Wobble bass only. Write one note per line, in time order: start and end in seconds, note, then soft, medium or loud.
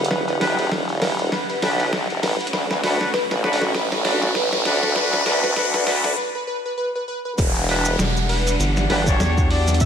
0.00 0.70 E1 medium
0.71 1.30 E1 loud
1.62 2.07 B1 loud
2.10 2.21 E1 loud
2.23 2.38 A1 medium
2.53 2.82 D2 medium
2.83 2.98 D2 loud
3.31 3.73 A1 medium
3.74 4.63 A1 loud
4.65 5.54 D2 loud
5.56 6.15 D2 medium
7.38 7.97 E1 loud
8.90 9.18 G1 loud